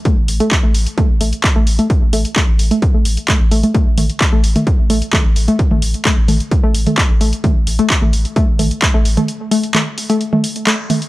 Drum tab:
HH |x-oxx-oxx-oxx-ox|x-oxx-oxx-oxx-ox|x-oxx-oxx-oxx-ox|x-oxx-oxx-oxx-ox|
CP |----x-------x---|----x-------x---|----x-------x---|----x-------x---|
T2 |----------------|----------------|--o----o----o---|-o----o----o----|
BD |o---o---o---o---|o---o---o---o---|o---o---o---o---|o---o---o---o---|

HH |x-oxx-oxx-oxx-ox|x-oxx-oxx-oxx-ox|
CP |----x-------x---|----x-------x---|
T2 |o----o----o----o|----o----o----o-|
BD |o---o---o---o---|----------------|